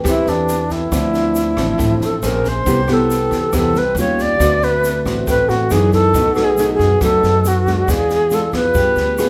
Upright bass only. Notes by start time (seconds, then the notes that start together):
0.05 E2
0.26 E2
0.92 D2
1.57 A1
1.79 A1
2.00 A1
2.23 A#1
2.67 C2
3.31 E2
3.53 E2
3.74 C2
3.95 D#2
4.40 D2
5.05 A1
5.27 A1
5.49 A1
5.71 F#2
6.14 B1
6.79 F#2
7.01 F#2
7.23 F#2
7.88 E2
8.53 F2
8.75 G2
8.96 D2